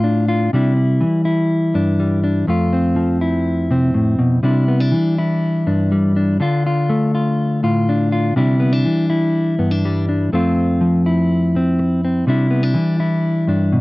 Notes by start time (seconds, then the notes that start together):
Already playing: A2 A3 F4
0.04 D4
0.28 F4
0.53 C3 G3 D4 E4
0.77 muted clean electric guitar stroke
1.01 E3
1.25 E4
1.74 G2 D4
2.00 G3
2.24 D4
2.47 F2 A3 F4, muted clean electric guitar stroke
2.73 C4
2.96 F3
3.21 E4
3.71 C3 C4
3.94 A2
4.19 B2
4.43 C3 G3 D4 E4
4.68 B3
4.80 D4
4.92 E3
5.18 E4
5.67 G2 D4
5.92 G3
6.16 D4
6.40 D3 D4 F4
6.67 F4
6.89 A3
7.15 F4
7.63 A2 F4
7.89 D4
8.12 F4
8.36 C3 G3 D4 E4
8.60 B3
8.73 D4
8.85 E3
9.10 E4
9.59 G2 B3
9.71 D4
9.85 G3
10.09 D4
10.33 F2 A3 C4 F4
10.81 F3
11.06 E4
11.55 C4, muted clean electric guitar stroke
11.79 muted clean electric guitar stroke
12.05 C4
12.27 C3 G3 D4 E4
12.51 B3
12.63 D4
12.74 E3
13.00 E4
13.47 G2 D4
13.72 B2